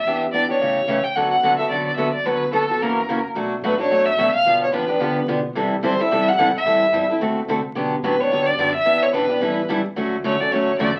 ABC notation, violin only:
X:1
M:4/4
L:1/8
Q:"Swing" 1/4=218
K:D
V:1 name="Violin"
e z d c4 g | f f2 e d d e d | B2 A2 ^A3 z | [K:Bm] z2 B c2 e2 ^e- |
^e c B4 z2 | z2 =c e2 f2 e- | e3 z4 z | z2 B c2 d2 e- |
e c B4 z2 | z2 c d c2 d z |]